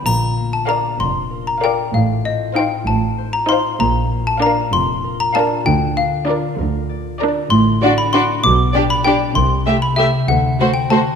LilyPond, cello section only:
\new Staff \with { instrumentName = "Cello section" } { \clef bass \time 6/8 \key bes \major \tempo 4. = 65 bes,4. f,4. | a,4. a,4. | bes,4. f,4. | d4. d4. |
\key d \mixolydian a,4. b,4. | c4. d,4. | }